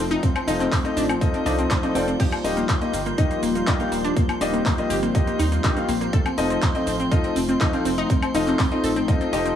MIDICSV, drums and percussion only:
0, 0, Header, 1, 2, 480
1, 0, Start_track
1, 0, Tempo, 491803
1, 224, Time_signature, 4, 2, 24, 8
1, 9326, End_track
2, 0, Start_track
2, 0, Title_t, "Drums"
2, 108, Note_on_c, 9, 42, 39
2, 111, Note_on_c, 9, 82, 34
2, 205, Note_off_c, 9, 42, 0
2, 208, Note_off_c, 9, 82, 0
2, 224, Note_on_c, 9, 36, 118
2, 225, Note_on_c, 9, 42, 102
2, 228, Note_on_c, 9, 82, 47
2, 322, Note_off_c, 9, 36, 0
2, 323, Note_off_c, 9, 42, 0
2, 326, Note_off_c, 9, 82, 0
2, 348, Note_on_c, 9, 42, 41
2, 348, Note_on_c, 9, 76, 79
2, 351, Note_on_c, 9, 82, 24
2, 446, Note_off_c, 9, 42, 0
2, 446, Note_off_c, 9, 76, 0
2, 449, Note_off_c, 9, 82, 0
2, 466, Note_on_c, 9, 46, 109
2, 469, Note_on_c, 9, 82, 89
2, 564, Note_off_c, 9, 46, 0
2, 567, Note_off_c, 9, 82, 0
2, 587, Note_on_c, 9, 39, 39
2, 589, Note_on_c, 9, 42, 41
2, 592, Note_on_c, 9, 82, 34
2, 685, Note_off_c, 9, 39, 0
2, 686, Note_off_c, 9, 42, 0
2, 689, Note_off_c, 9, 82, 0
2, 704, Note_on_c, 9, 36, 110
2, 705, Note_on_c, 9, 39, 124
2, 707, Note_on_c, 9, 46, 63
2, 710, Note_on_c, 9, 82, 47
2, 802, Note_off_c, 9, 36, 0
2, 803, Note_off_c, 9, 39, 0
2, 804, Note_off_c, 9, 46, 0
2, 807, Note_off_c, 9, 82, 0
2, 828, Note_on_c, 9, 42, 42
2, 831, Note_on_c, 9, 82, 24
2, 926, Note_off_c, 9, 42, 0
2, 929, Note_off_c, 9, 82, 0
2, 946, Note_on_c, 9, 46, 108
2, 949, Note_on_c, 9, 82, 87
2, 1044, Note_off_c, 9, 46, 0
2, 1047, Note_off_c, 9, 82, 0
2, 1069, Note_on_c, 9, 42, 40
2, 1069, Note_on_c, 9, 76, 61
2, 1072, Note_on_c, 9, 82, 36
2, 1166, Note_off_c, 9, 42, 0
2, 1166, Note_off_c, 9, 76, 0
2, 1169, Note_off_c, 9, 82, 0
2, 1184, Note_on_c, 9, 36, 115
2, 1186, Note_on_c, 9, 42, 94
2, 1189, Note_on_c, 9, 82, 47
2, 1282, Note_off_c, 9, 36, 0
2, 1283, Note_off_c, 9, 42, 0
2, 1287, Note_off_c, 9, 82, 0
2, 1309, Note_on_c, 9, 42, 42
2, 1312, Note_on_c, 9, 82, 24
2, 1406, Note_off_c, 9, 42, 0
2, 1409, Note_off_c, 9, 82, 0
2, 1426, Note_on_c, 9, 46, 102
2, 1429, Note_on_c, 9, 82, 82
2, 1524, Note_off_c, 9, 46, 0
2, 1527, Note_off_c, 9, 82, 0
2, 1548, Note_on_c, 9, 42, 45
2, 1551, Note_on_c, 9, 82, 36
2, 1646, Note_off_c, 9, 42, 0
2, 1649, Note_off_c, 9, 82, 0
2, 1664, Note_on_c, 9, 39, 127
2, 1665, Note_on_c, 9, 36, 113
2, 1666, Note_on_c, 9, 42, 97
2, 1669, Note_on_c, 9, 82, 50
2, 1762, Note_off_c, 9, 36, 0
2, 1762, Note_off_c, 9, 39, 0
2, 1764, Note_off_c, 9, 42, 0
2, 1767, Note_off_c, 9, 82, 0
2, 1789, Note_on_c, 9, 42, 42
2, 1792, Note_on_c, 9, 82, 23
2, 1887, Note_off_c, 9, 42, 0
2, 1890, Note_off_c, 9, 82, 0
2, 1907, Note_on_c, 9, 46, 106
2, 1910, Note_on_c, 9, 82, 83
2, 2004, Note_off_c, 9, 46, 0
2, 2007, Note_off_c, 9, 82, 0
2, 2029, Note_on_c, 9, 42, 39
2, 2032, Note_on_c, 9, 82, 35
2, 2127, Note_off_c, 9, 42, 0
2, 2130, Note_off_c, 9, 82, 0
2, 2145, Note_on_c, 9, 36, 116
2, 2147, Note_on_c, 9, 42, 99
2, 2147, Note_on_c, 9, 49, 74
2, 2150, Note_on_c, 9, 82, 45
2, 2242, Note_off_c, 9, 36, 0
2, 2244, Note_off_c, 9, 42, 0
2, 2244, Note_off_c, 9, 49, 0
2, 2247, Note_off_c, 9, 82, 0
2, 2269, Note_on_c, 9, 42, 42
2, 2269, Note_on_c, 9, 76, 75
2, 2272, Note_on_c, 9, 82, 22
2, 2366, Note_off_c, 9, 42, 0
2, 2366, Note_off_c, 9, 76, 0
2, 2369, Note_off_c, 9, 82, 0
2, 2387, Note_on_c, 9, 46, 115
2, 2390, Note_on_c, 9, 82, 83
2, 2484, Note_off_c, 9, 46, 0
2, 2487, Note_off_c, 9, 82, 0
2, 2508, Note_on_c, 9, 42, 44
2, 2511, Note_on_c, 9, 82, 33
2, 2606, Note_off_c, 9, 42, 0
2, 2609, Note_off_c, 9, 82, 0
2, 2624, Note_on_c, 9, 39, 127
2, 2625, Note_on_c, 9, 36, 117
2, 2626, Note_on_c, 9, 42, 94
2, 2629, Note_on_c, 9, 82, 46
2, 2721, Note_off_c, 9, 39, 0
2, 2723, Note_off_c, 9, 36, 0
2, 2723, Note_off_c, 9, 42, 0
2, 2726, Note_off_c, 9, 82, 0
2, 2748, Note_on_c, 9, 42, 43
2, 2751, Note_on_c, 9, 82, 22
2, 2846, Note_off_c, 9, 42, 0
2, 2849, Note_off_c, 9, 82, 0
2, 2865, Note_on_c, 9, 46, 106
2, 2868, Note_on_c, 9, 82, 83
2, 2963, Note_off_c, 9, 46, 0
2, 2966, Note_off_c, 9, 82, 0
2, 2988, Note_on_c, 9, 42, 40
2, 2991, Note_on_c, 9, 82, 32
2, 3086, Note_off_c, 9, 42, 0
2, 3089, Note_off_c, 9, 82, 0
2, 3105, Note_on_c, 9, 36, 124
2, 3105, Note_on_c, 9, 42, 92
2, 3108, Note_on_c, 9, 82, 44
2, 3203, Note_off_c, 9, 36, 0
2, 3203, Note_off_c, 9, 42, 0
2, 3206, Note_off_c, 9, 82, 0
2, 3228, Note_on_c, 9, 42, 41
2, 3231, Note_on_c, 9, 82, 23
2, 3326, Note_off_c, 9, 42, 0
2, 3329, Note_off_c, 9, 82, 0
2, 3346, Note_on_c, 9, 46, 113
2, 3349, Note_on_c, 9, 82, 83
2, 3443, Note_off_c, 9, 46, 0
2, 3446, Note_off_c, 9, 82, 0
2, 3468, Note_on_c, 9, 42, 43
2, 3471, Note_on_c, 9, 82, 34
2, 3566, Note_off_c, 9, 42, 0
2, 3569, Note_off_c, 9, 82, 0
2, 3584, Note_on_c, 9, 39, 127
2, 3585, Note_on_c, 9, 42, 96
2, 3586, Note_on_c, 9, 36, 118
2, 3588, Note_on_c, 9, 82, 45
2, 3681, Note_off_c, 9, 39, 0
2, 3683, Note_off_c, 9, 36, 0
2, 3683, Note_off_c, 9, 42, 0
2, 3686, Note_off_c, 9, 82, 0
2, 3708, Note_on_c, 9, 42, 40
2, 3711, Note_on_c, 9, 82, 23
2, 3806, Note_off_c, 9, 42, 0
2, 3809, Note_off_c, 9, 82, 0
2, 3826, Note_on_c, 9, 46, 106
2, 3829, Note_on_c, 9, 82, 84
2, 3924, Note_off_c, 9, 46, 0
2, 3927, Note_off_c, 9, 82, 0
2, 3949, Note_on_c, 9, 42, 38
2, 3952, Note_on_c, 9, 82, 32
2, 4046, Note_off_c, 9, 42, 0
2, 4049, Note_off_c, 9, 82, 0
2, 4065, Note_on_c, 9, 36, 120
2, 4066, Note_on_c, 9, 42, 91
2, 4069, Note_on_c, 9, 82, 44
2, 4163, Note_off_c, 9, 36, 0
2, 4164, Note_off_c, 9, 42, 0
2, 4167, Note_off_c, 9, 82, 0
2, 4188, Note_on_c, 9, 42, 40
2, 4188, Note_on_c, 9, 76, 76
2, 4191, Note_on_c, 9, 82, 22
2, 4285, Note_off_c, 9, 42, 0
2, 4285, Note_off_c, 9, 76, 0
2, 4288, Note_off_c, 9, 82, 0
2, 4305, Note_on_c, 9, 46, 112
2, 4308, Note_on_c, 9, 82, 79
2, 4403, Note_off_c, 9, 46, 0
2, 4406, Note_off_c, 9, 82, 0
2, 4428, Note_on_c, 9, 42, 43
2, 4431, Note_on_c, 9, 82, 33
2, 4526, Note_off_c, 9, 42, 0
2, 4529, Note_off_c, 9, 82, 0
2, 4544, Note_on_c, 9, 39, 121
2, 4545, Note_on_c, 9, 36, 119
2, 4546, Note_on_c, 9, 46, 63
2, 4549, Note_on_c, 9, 82, 45
2, 4642, Note_off_c, 9, 39, 0
2, 4643, Note_off_c, 9, 36, 0
2, 4644, Note_off_c, 9, 46, 0
2, 4647, Note_off_c, 9, 82, 0
2, 4668, Note_on_c, 9, 42, 42
2, 4671, Note_on_c, 9, 82, 22
2, 4766, Note_off_c, 9, 42, 0
2, 4769, Note_off_c, 9, 82, 0
2, 4785, Note_on_c, 9, 46, 117
2, 4788, Note_on_c, 9, 82, 79
2, 4883, Note_off_c, 9, 46, 0
2, 4886, Note_off_c, 9, 82, 0
2, 4908, Note_on_c, 9, 42, 39
2, 4911, Note_on_c, 9, 82, 34
2, 5006, Note_off_c, 9, 42, 0
2, 5009, Note_off_c, 9, 82, 0
2, 5025, Note_on_c, 9, 36, 127
2, 5025, Note_on_c, 9, 42, 89
2, 5028, Note_on_c, 9, 82, 44
2, 5122, Note_off_c, 9, 36, 0
2, 5123, Note_off_c, 9, 42, 0
2, 5126, Note_off_c, 9, 82, 0
2, 5148, Note_on_c, 9, 42, 42
2, 5151, Note_on_c, 9, 82, 21
2, 5246, Note_off_c, 9, 42, 0
2, 5249, Note_off_c, 9, 82, 0
2, 5266, Note_on_c, 9, 46, 112
2, 5269, Note_on_c, 9, 82, 80
2, 5363, Note_off_c, 9, 46, 0
2, 5366, Note_off_c, 9, 82, 0
2, 5388, Note_on_c, 9, 42, 43
2, 5391, Note_on_c, 9, 82, 35
2, 5485, Note_off_c, 9, 42, 0
2, 5488, Note_off_c, 9, 82, 0
2, 5504, Note_on_c, 9, 39, 124
2, 5505, Note_on_c, 9, 36, 123
2, 5506, Note_on_c, 9, 42, 95
2, 5509, Note_on_c, 9, 82, 44
2, 5602, Note_off_c, 9, 36, 0
2, 5602, Note_off_c, 9, 39, 0
2, 5603, Note_off_c, 9, 42, 0
2, 5606, Note_off_c, 9, 82, 0
2, 5628, Note_on_c, 9, 42, 38
2, 5631, Note_on_c, 9, 82, 22
2, 5726, Note_off_c, 9, 42, 0
2, 5729, Note_off_c, 9, 82, 0
2, 5745, Note_on_c, 9, 46, 116
2, 5748, Note_on_c, 9, 82, 77
2, 5843, Note_off_c, 9, 46, 0
2, 5846, Note_off_c, 9, 82, 0
2, 5868, Note_on_c, 9, 42, 38
2, 5871, Note_on_c, 9, 82, 32
2, 5965, Note_off_c, 9, 42, 0
2, 5968, Note_off_c, 9, 82, 0
2, 5985, Note_on_c, 9, 36, 127
2, 5985, Note_on_c, 9, 42, 88
2, 5988, Note_on_c, 9, 82, 43
2, 6082, Note_off_c, 9, 36, 0
2, 6082, Note_off_c, 9, 42, 0
2, 6085, Note_off_c, 9, 82, 0
2, 6107, Note_on_c, 9, 42, 37
2, 6107, Note_on_c, 9, 76, 79
2, 6110, Note_on_c, 9, 82, 21
2, 6205, Note_off_c, 9, 42, 0
2, 6205, Note_off_c, 9, 76, 0
2, 6208, Note_off_c, 9, 82, 0
2, 6225, Note_on_c, 9, 46, 122
2, 6228, Note_on_c, 9, 82, 82
2, 6322, Note_off_c, 9, 46, 0
2, 6325, Note_off_c, 9, 82, 0
2, 6347, Note_on_c, 9, 42, 40
2, 6350, Note_on_c, 9, 82, 33
2, 6445, Note_off_c, 9, 42, 0
2, 6448, Note_off_c, 9, 82, 0
2, 6463, Note_on_c, 9, 39, 123
2, 6464, Note_on_c, 9, 36, 127
2, 6465, Note_on_c, 9, 42, 92
2, 6468, Note_on_c, 9, 82, 43
2, 6561, Note_off_c, 9, 39, 0
2, 6562, Note_off_c, 9, 36, 0
2, 6563, Note_off_c, 9, 42, 0
2, 6566, Note_off_c, 9, 82, 0
2, 6588, Note_on_c, 9, 42, 38
2, 6591, Note_on_c, 9, 82, 21
2, 6686, Note_off_c, 9, 42, 0
2, 6689, Note_off_c, 9, 82, 0
2, 6705, Note_on_c, 9, 46, 116
2, 6708, Note_on_c, 9, 82, 79
2, 6803, Note_off_c, 9, 46, 0
2, 6806, Note_off_c, 9, 82, 0
2, 6828, Note_on_c, 9, 42, 36
2, 6831, Note_on_c, 9, 82, 32
2, 6925, Note_off_c, 9, 42, 0
2, 6928, Note_off_c, 9, 82, 0
2, 6944, Note_on_c, 9, 36, 127
2, 6945, Note_on_c, 9, 42, 83
2, 6948, Note_on_c, 9, 82, 43
2, 7042, Note_off_c, 9, 36, 0
2, 7043, Note_off_c, 9, 42, 0
2, 7046, Note_off_c, 9, 82, 0
2, 7067, Note_on_c, 9, 42, 38
2, 7070, Note_on_c, 9, 82, 22
2, 7165, Note_off_c, 9, 42, 0
2, 7168, Note_off_c, 9, 82, 0
2, 7185, Note_on_c, 9, 46, 116
2, 7188, Note_on_c, 9, 82, 78
2, 7282, Note_off_c, 9, 46, 0
2, 7285, Note_off_c, 9, 82, 0
2, 7307, Note_on_c, 9, 42, 40
2, 7310, Note_on_c, 9, 82, 35
2, 7405, Note_off_c, 9, 42, 0
2, 7408, Note_off_c, 9, 82, 0
2, 7423, Note_on_c, 9, 39, 118
2, 7424, Note_on_c, 9, 36, 122
2, 7425, Note_on_c, 9, 42, 90
2, 7428, Note_on_c, 9, 82, 45
2, 7521, Note_off_c, 9, 39, 0
2, 7522, Note_off_c, 9, 36, 0
2, 7522, Note_off_c, 9, 42, 0
2, 7525, Note_off_c, 9, 82, 0
2, 7547, Note_on_c, 9, 42, 39
2, 7550, Note_on_c, 9, 82, 21
2, 7645, Note_off_c, 9, 42, 0
2, 7648, Note_off_c, 9, 82, 0
2, 7665, Note_on_c, 9, 46, 112
2, 7668, Note_on_c, 9, 82, 78
2, 7763, Note_off_c, 9, 46, 0
2, 7766, Note_off_c, 9, 82, 0
2, 7788, Note_on_c, 9, 42, 40
2, 7791, Note_on_c, 9, 82, 29
2, 7885, Note_off_c, 9, 42, 0
2, 7888, Note_off_c, 9, 82, 0
2, 7904, Note_on_c, 9, 36, 127
2, 7905, Note_on_c, 9, 42, 86
2, 7908, Note_on_c, 9, 82, 43
2, 8002, Note_off_c, 9, 36, 0
2, 8003, Note_off_c, 9, 42, 0
2, 8006, Note_off_c, 9, 82, 0
2, 8028, Note_on_c, 9, 42, 40
2, 8028, Note_on_c, 9, 76, 83
2, 8031, Note_on_c, 9, 82, 22
2, 8125, Note_off_c, 9, 42, 0
2, 8125, Note_off_c, 9, 76, 0
2, 8128, Note_off_c, 9, 82, 0
2, 8145, Note_on_c, 9, 46, 115
2, 8148, Note_on_c, 9, 82, 80
2, 8243, Note_off_c, 9, 46, 0
2, 8246, Note_off_c, 9, 82, 0
2, 8266, Note_on_c, 9, 39, 38
2, 8268, Note_on_c, 9, 42, 40
2, 8271, Note_on_c, 9, 82, 32
2, 8364, Note_off_c, 9, 39, 0
2, 8366, Note_off_c, 9, 42, 0
2, 8369, Note_off_c, 9, 82, 0
2, 8384, Note_on_c, 9, 36, 124
2, 8384, Note_on_c, 9, 39, 118
2, 8385, Note_on_c, 9, 46, 65
2, 8388, Note_on_c, 9, 82, 44
2, 8481, Note_off_c, 9, 39, 0
2, 8482, Note_off_c, 9, 36, 0
2, 8483, Note_off_c, 9, 46, 0
2, 8486, Note_off_c, 9, 82, 0
2, 8508, Note_on_c, 9, 42, 38
2, 8511, Note_on_c, 9, 82, 22
2, 8605, Note_off_c, 9, 42, 0
2, 8608, Note_off_c, 9, 82, 0
2, 8625, Note_on_c, 9, 46, 122
2, 8628, Note_on_c, 9, 82, 81
2, 8722, Note_off_c, 9, 46, 0
2, 8725, Note_off_c, 9, 82, 0
2, 8748, Note_on_c, 9, 42, 39
2, 8751, Note_on_c, 9, 82, 32
2, 8846, Note_off_c, 9, 42, 0
2, 8849, Note_off_c, 9, 82, 0
2, 8864, Note_on_c, 9, 36, 123
2, 8866, Note_on_c, 9, 42, 84
2, 8869, Note_on_c, 9, 82, 41
2, 8962, Note_off_c, 9, 36, 0
2, 8964, Note_off_c, 9, 42, 0
2, 8967, Note_off_c, 9, 82, 0
2, 8988, Note_on_c, 9, 42, 38
2, 8991, Note_on_c, 9, 82, 23
2, 9086, Note_off_c, 9, 42, 0
2, 9089, Note_off_c, 9, 82, 0
2, 9106, Note_on_c, 9, 46, 111
2, 9109, Note_on_c, 9, 82, 76
2, 9203, Note_off_c, 9, 46, 0
2, 9207, Note_off_c, 9, 82, 0
2, 9228, Note_on_c, 9, 42, 37
2, 9231, Note_on_c, 9, 82, 33
2, 9326, Note_off_c, 9, 42, 0
2, 9326, Note_off_c, 9, 82, 0
2, 9326, End_track
0, 0, End_of_file